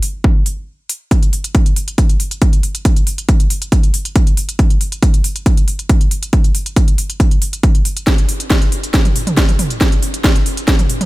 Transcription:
0.03 open hi-hat
0.24 kick
0.46 open hi-hat
0.89 open hi-hat
1.11 kick, closed hi-hat
1.23 closed hi-hat
1.33 open hi-hat
1.44 closed hi-hat
1.55 kick, closed hi-hat
1.66 closed hi-hat
1.76 open hi-hat
1.88 closed hi-hat
1.98 kick, closed hi-hat
2.10 closed hi-hat
2.20 open hi-hat
2.31 closed hi-hat
2.42 kick, closed hi-hat
2.53 closed hi-hat
2.63 open hi-hat
2.75 closed hi-hat
2.85 kick, closed hi-hat
2.96 closed hi-hat
3.07 open hi-hat
3.18 closed hi-hat
3.29 kick, closed hi-hat
3.40 closed hi-hat
3.50 open hi-hat
3.62 closed hi-hat
3.72 kick, closed hi-hat
3.83 closed hi-hat
3.94 open hi-hat
4.05 closed hi-hat
4.16 kick, closed hi-hat
4.27 closed hi-hat
4.37 open hi-hat
4.49 closed hi-hat
4.59 kick, closed hi-hat
4.70 closed hi-hat
4.81 open hi-hat
4.92 closed hi-hat
5.03 kick, closed hi-hat
5.14 closed hi-hat
5.24 open hi-hat
5.36 closed hi-hat
5.46 kick, closed hi-hat
5.57 closed hi-hat
5.68 open hi-hat
5.79 closed hi-hat
5.89 kick, closed hi-hat
6.01 closed hi-hat
6.11 open hi-hat
6.23 closed hi-hat
6.33 kick, closed hi-hat
6.44 closed hi-hat
6.55 open hi-hat
6.66 closed hi-hat
6.76 kick, closed hi-hat
6.88 closed hi-hat
6.98 open hi-hat
7.10 closed hi-hat
7.20 kick, closed hi-hat
7.31 closed hi-hat
7.42 open hi-hat
7.53 closed hi-hat
7.63 kick, closed hi-hat
7.75 closed hi-hat
7.85 open hi-hat
7.97 closed hi-hat
8.07 kick, snare, closed hi-hat
8.18 closed hi-hat
8.29 open hi-hat
8.40 closed hi-hat
8.50 kick, snare, closed hi-hat
8.62 closed hi-hat
8.72 open hi-hat
8.84 closed hi-hat
8.94 kick, snare, closed hi-hat
9.05 closed hi-hat, mid tom
9.16 open hi-hat
9.27 closed hi-hat, mid tom
9.37 kick, snare, closed hi-hat
9.49 closed hi-hat, mid tom
9.59 mid tom, open hi-hat
9.70 closed hi-hat
9.81 kick, snare, closed hi-hat
9.92 closed hi-hat
10.03 open hi-hat
10.14 closed hi-hat
10.24 kick, snare, closed hi-hat
10.36 closed hi-hat
10.46 open hi-hat
10.57 closed hi-hat
10.68 kick, snare, closed hi-hat
10.79 closed hi-hat, mid tom
10.90 open hi-hat
11.01 closed hi-hat, mid tom

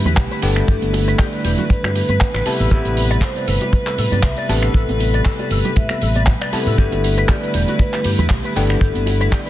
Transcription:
Already playing: D3 G3 A3 B3 E4 G4 B4
0.05 E2 B4, closed hi-hat, high bongo, high conga, low conga, shaker
0.17 B1, kick, clap, closed hi-hat, shaker
0.31 B4, closed hi-hat, shaker
0.42 G1 D3 G3 A3 B3 D4 A4 G5, open hi-hat, shaker
0.56 G4, finger snap, closed hi-hat, high bongo, shaker
0.68 G1 G4 A4, kick, closed hi-hat, shaker
0.82 G1, closed hi-hat, high conga, shaker
0.93 open hi-hat, high bongo, shaker
1.08 B4, closed hi-hat, shaker
1.19 G4 D5, kick, clap, closed hi-hat, shaker
1.32 B4, closed hi-hat, shaker
1.44 E1 G4, open hi-hat, high bongo, shaker
1.58 F#4, closed hi-hat, low conga, shaker
1.70 B4, kick, closed hi-hat, shaker
1.83 G2 G4, finger snap, closed hi-hat, high bongo, high conga, shaker
1.95 G4 B4, open hi-hat, shaker
2.09 G2 B4, closed hi-hat, high conga, shaker
2.20 kick, clap, closed hi-hat, shaker
2.34 A1 B4, finger snap, closed hi-hat, high bongo, shaker
2.46 C3 G3 A3 B3 E4 G4 A5, muted fingered electric bass stroke, open hi-hat, shaker
2.60 A1 A4, open hi-hat, high conga, shaker
2.71 A1 C3 G3 A3 B3 E4 G4 A4, kick, closed hi-hat, high bongo, shaker
2.85 A1, closed hi-hat, high conga, shaker
2.97 open hi-hat, shaker
3.10 D5, closed hi-hat, shaker
3.21 A4 C5, kick, clap, closed hi-hat, high bongo, shaker
3.36 D5, closed hi-hat, shaker
3.48 G1 A4 B4, open hi-hat, shaker
3.61 G4, closed hi-hat, high bongo, shaker
3.73 B4, kick, closed hi-hat, shaker
3.87 A4, clap, closed hi-hat, shaker
3.98 A2 A4, open hi-hat, shaker
4.12 G2 D5, closed hi-hat, high bongo, high conga, low conga, shaker
4.23 C2 E5, kick, clap, closed hi-hat, shaker
4.37 D5, closed hi-hat, shaker
4.49 A1 C3 G3 A3 B3 D4 A4 A5, open hi-hat, high bongo, shaker
4.63 A4, finger snap, closed hi-hat, shaker
4.68 B4
4.74 A1 C3 A3 E4 A4, kick, closed hi-hat, shaker
4.88 A1, closed hi-hat, high conga, shaker
5.00 open hi-hat, high bongo, shaker
5.14 D5, closed hi-hat, shaker
5.25 A4, kick, clap, closed hi-hat, shaker
5.39 D5, closed hi-hat, high bongo, shaker
5.51 G1 A4, open hi-hat, shaker
5.64 G4, closed hi-hat, low conga, shaker
5.76 A2 E5, kick, closed hi-hat, shaker
5.89 A4, finger snap, muted fingered electric bass stroke, closed hi-hat, high bongo, high conga, shaker
6.01 A1 A4, open hi-hat, shaker
6.15 D5, closed hi-hat, high conga, shaker
6.26 kick, clap, closed hi-hat, high bongo, shaker
6.41 D5, finger snap, closed hi-hat, shaker
6.52 C3 G3 A3 B3 E4 A4 A5, muted fingered electric bass stroke, open hi-hat, shaker
6.66 A2 A4, open hi-hat, high conga, shaker
6.77 G1 D3 G3 A3 B3 E4 G4 A4, kick, closed hi-hat, shaker
6.92 G1, closed hi-hat, high bongo, high conga, shaker
7.04 open hi-hat, shaker
7.17 B4, closed hi-hat, shaker
7.28 G4 D5, kick, clap, closed hi-hat, high bongo, shaker
7.43 B4, closed hi-hat, shaker
7.54 E1 G4, open hi-hat, shaker
7.68 F#4, closed hi-hat, shaker
7.79 B4, kick, closed hi-hat, high bongo, shaker
7.93 G4, clap, closed hi-hat, shaker
8.04 G2 G4, open hi-hat, shaker
8.18 E2 B4, closed hi-hat, high bongo, high conga, low conga, shaker
8.29 B1, kick, clap, closed hi-hat, shaker
8.44 B4, closed hi-hat, shaker
8.56 G1 D3 G3 A3 B3 D4 A4 G5, open hi-hat, shaker
8.69 G4, finger snap, closed hi-hat, high bongo, shaker
8.80 G1 D3 G4 A4, kick, closed hi-hat, shaker
8.95 G1, closed hi-hat, high conga, shaker
9.06 open hi-hat, high bongo, shaker
9.21 B4, closed hi-hat, shaker
9.32 G4 D5, kick, clap, closed hi-hat, shaker
9.46 B4, closed hi-hat, shaker

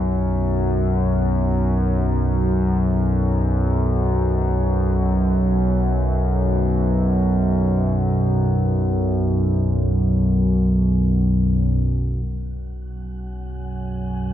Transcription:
Already playing: B1 F#2
12.23 B1 F#2 F#4 F#5
12.73 G#5
13.01 C#5

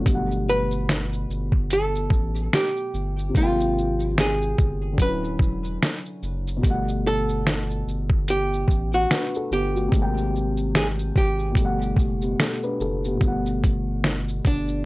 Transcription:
Already playing: F#3 D4
0.01 B2
0.05 G1 G3, kick, closed hi-hat, shaker
0.10 A3
0.14 F#5
0.31 shaker
0.49 B4, shaker
0.71 shaker
0.89 finger snap, snare, closed hi-hat, shaker
1.13 shaker
1.29 G1, shaker
1.52 kick
1.70 A4, closed hi-hat, shaker
1.95 shaker
2.10 A1, kick, shaker
2.36 shaker
2.53 G4, finger snap, snare, closed hi-hat, shaker
2.77 shaker
2.94 G1, shaker
3.19 shaker
3.29 C3
3.34 G#1 G#3 F4, kick, closed hi-hat, shaker
3.38 A#3
3.43 G5
3.60 shaker
3.78 shaker
4.00 shaker
4.18 G#4, finger snap, snare, closed hi-hat, shaker
4.42 shaker
4.58 G1, kick, shaker
4.93 D3
4.98 D1 F#3 B4, kick, closed hi-hat, shaker
5.02 C#4
5.06 E4
5.24 shaker
5.39 E1, kick, shaker
5.65 shaker
5.83 finger snap, snare, closed hi-hat, shaker
6.06 shaker
6.23 F#1, shaker
6.47 shaker
6.57 B2
6.61 G1 G3, kick, closed hi-hat, shaker
6.65 A3
6.70 F#5
6.88 shaker
7.07 A4, shaker
7.29 shaker
7.47 finger snap, snare, closed hi-hat, shaker
7.71 shaker
7.87 G1, shaker
8.10 kick
8.28 G4, closed hi-hat, shaker
8.53 shaker
8.68 A1, kick, shaker
8.93 F#4, shaker
9.11 D4 B4, finger snap, snare, closed hi-hat, shaker
9.35 A4, shaker
9.51 G1 B3 G4, shaker
9.75 A3 F#4, shaker
9.88 C3, kick
9.92 G#1 G#3, closed hi-hat, shaker
9.97 A#3
10.02 G5
10.18 shaker
10.36 shaker
10.57 shaker
10.75 G#4, finger snap, snare, closed hi-hat, shaker
10.99 shaker
11.16 G#1 G4, kick, shaker
11.39 shaker
11.51 B2
11.55 G1 G3, kick, closed hi-hat, shaker
11.60 A3
11.65 F#5
11.82 shaker
11.96 F#1, kick, shaker
12.22 B3 G4, shaker
12.40 A4, finger snap, snare, closed hi-hat, shaker
12.63 D4 B4, shaker
12.80 F#1 A4, shaker
13.04 B3 G4, shaker
13.14 A#2
13.18 G1 B2 G3, kick, shaker
13.23 A3
13.27 F#5
13.46 shaker
13.64 kick, closed hi-hat, shaker
14.04 finger snap, snare, shaker
14.28 shaker
14.45 G1 D4, kick, closed hi-hat, shaker
14.68 shaker

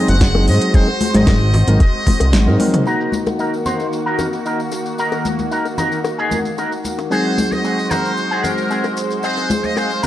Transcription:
Already playing: F#3 G#3 C4 D#4 F#4 G#4 C5
0.08 F#1 F#5, closed hi-hat
0.21 kick, snare, closed hi-hat
0.35 F#3 G#3 C4 D#4 G#4, high bongo
0.48 G#2 D#5, open hi-hat
0.61 closed hi-hat
0.74 F#3 G#3 C4 D#4 G#4 C5, kick, closed hi-hat
0.88 high bongo
1.01 open hi-hat, high conga
1.14 G#1 F#3 G#3 C4 D#4 C5 D#5, snare, closed hi-hat, high conga
1.27 kick, snare, closed hi-hat, high bongo
1.54 open hi-hat, low conga
1.67 G#1 F#3 G#3 C4 D#4 A#4, closed hi-hat
1.80 D#5, kick, closed hi-hat, high bongo
2.07 kick, open hi-hat, high conga, low conga
2.20 C2, closed hi-hat, high bongo
2.33 G#1, snare, closed hi-hat
2.47 G#2 F#3 G#3 C4 D#4 A#4
2.60 F#3 G#3 C4 D#4 A#4, open hi-hat, high tom, high conga
2.74 closed hi-hat, mid tom, high bongo
2.86 D#3 A#3 D#4 F#4 A#4, tambourine, high bongo, shaker
3.01 shaker
3.12 tambourine, high conga, shaker
3.26 tambourine, high bongo, high conga, shaker
3.39 D#4 F#4 A#4, tambourine, shaker
3.54 tambourine, shaker
3.66 D#4 F#4 C5, tambourine, low conga, shaker
3.80 tambourine, high bongo, shaker
3.93 tambourine, shaker
4.06 D#4 F#4 A#4, shaker
4.19 tambourine, high bongo, low conga, shaker
4.33 tambourine, shaker
4.45 D#4 F#4 A#4, tambourine, shaker
4.60 tambourine, shaker
4.72 muted clean electric guitar stroke, tambourine, high bongo, shaker
4.86 tambourine, shaker
4.98 D#4 F#4 A#4, tambourine, shaker
5.12 tambourine, high bongo, shaker
5.25 tambourine, high conga, shaker
5.39 tambourine, high conga, shaker
5.51 D#4 F#4 A#4, tambourine, shaker
5.65 tambourine, high bongo, shaker
5.78 D#4 F#4 A#4, tambourine, low conga, shaker
5.92 tambourine, shaker
6.04 tambourine, high bongo, shaker
6.19 D#4 F#4 G#4, shaker
6.31 tambourine, high conga, low conga, shaker
6.45 tambourine, shaker
6.58 D#4 F#4 A#4, tambourine, high bongo, shaker
6.72 tambourine, shaker
6.84 muted clean electric guitar stroke, tambourine, high conga, shaker
6.98 tambourine, high bongo, shaker
7.10 F#3 G#3 C4 D#4 F#4 G#4 C5, tambourine, shaker
7.25 shaker
7.38 tambourine, high conga, shaker
7.52 D#5, tambourine, high bongo, high conga, shaker
7.64 C4 F#4 G#4, tambourine, shaker
7.79 tambourine, shaker
7.91 C4 F#4 A#4 C5, tambourine, high bongo, low conga, shaker
8.05 tambourine, shaker
8.17 tambourine, shaker
8.31 C4 F#4 G#4, shaker
8.44 A#4, tambourine, high bongo, low conga, shaker
8.58 tambourine, shaker
8.70 C4 F#4 G#4, tambourine, shaker
8.84 tambourine, high bongo, shaker
8.97 muted clean electric guitar stroke, tambourine, shaker
9.10 tambourine, shaker
9.23 C4 F#4 G#4 C5 F5, tambourine, shaker
9.37 tambourine, high bongo, shaker
9.50 tambourine, high conga, shaker
9.64 D#5, tambourine, high conga, shaker
9.76 C4 F#4 G#4 C5, tambourine, high bongo, shaker
9.91 tambourine, shaker
10.03 C4 F#4 A#4 C5, tambourine, low conga, shaker

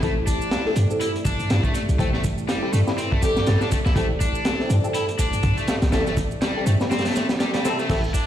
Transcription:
Already playing: A3 E4 G4
0.03 A1 A3 C4 E4 G4 A4 D5, kick, closed hi-hat, shaker
0.27 A1 D4, closed hi-hat, shaker
0.41 shaker
0.51 snare, closed hi-hat, shaker
0.66 C4 E4 G4 A4, snare
0.76 G2, closed hi-hat, shaker
0.91 C4 E4 G4 A4, shaker
1.01 E4, closed hi-hat, shaker
1.16 closed hi-hat
1.25 A1 D4, kick, closed hi-hat, shaker
1.40 G2, closed hi-hat, shaker
1.50 G2, snare, closed hi-hat, shaker
1.64 A3, kick, shaker
1.75 A3, closed hi-hat, shaker
1.89 C2, closed hi-hat, shaker
1.99 A1 A3 C4 E4 G4 A4, kick, closed hi-hat, shaker
2.14 A3, snare
2.24 A1, kick, closed hi-hat, shaker
2.38 shaker
2.49 G3, snare, closed hi-hat, shaker
2.63 C4 E4 G4 A4
2.73 G2 A3, closed hi-hat, shaker
2.87 C4 E4 G4 B4, snare, shaker
2.98 C4, closed hi-hat, shaker
3.12 A3, kick
3.22 A1 C4 E4 G4 A4, closed hi-hat, shaker
3.36 G2, snare, shaker
3.47 G2 G3, snare, closed hi-hat, shaker
3.61 D4, snare, shaker
3.71 A3, kick, closed hi-hat, shaker
3.86 C2 E4, snare, shaker
3.96 A1 A3 C4 E4 G4 A4, kick, closed hi-hat, shaker
4.21 A1 D4, closed hi-hat, shaker
4.35 shaker
4.45 snare, closed hi-hat, shaker
4.60 C4 E4 G4 A4, snare
4.70 G2, closed hi-hat, shaker
4.84 C4 E4 G4 A4, shaker
4.94 E4, closed hi-hat, shaker
5.09 closed hi-hat
5.19 A1 D4, closed hi-hat, shaker
5.33 G2, closed hi-hat, shaker
5.43 G2, kick, closed hi-hat, shaker
5.57 A3, closed hi-hat, shaker
5.68 A3, snare, closed hi-hat, shaker
5.82 C2, snare, closed hi-hat, shaker
5.92 A1 A3 C4 E4 G4 A4, snare, closed hi-hat, shaker
6.07 A3, snare, shaker
6.17 A1, kick, closed hi-hat, shaker
6.31 shaker
6.42 G3, snare, closed hi-hat, shaker
6.57 C4 E4 G4 A4
6.66 G2 A3, closed hi-hat, shaker
6.81 C4 E4 G4 B4, snare, shaker
6.91 C4, snare, closed hi-hat, shaker
6.99 snare, closed hi-hat
7.05 A3, snare, closed hi-hat, shaker
7.11 snare, closed hi-hat
7.16 A3, snare, closed hi-hat, shaker
7.29 snare, closed hi-hat, shaker
7.40 G3, snare, closed hi-hat, shaker
7.54 G3, snare, closed hi-hat, shaker
7.65 C4 E4 G4 A4, snare, closed hi-hat, shaker
7.79 A3, snare, shaker
7.89 A1 A3 C4 E4 G4 A4 B4 C5, kick, closed hi-hat, crash, shaker
8.04 shaker
8.14 A1 D4, closed hi-hat, shaker

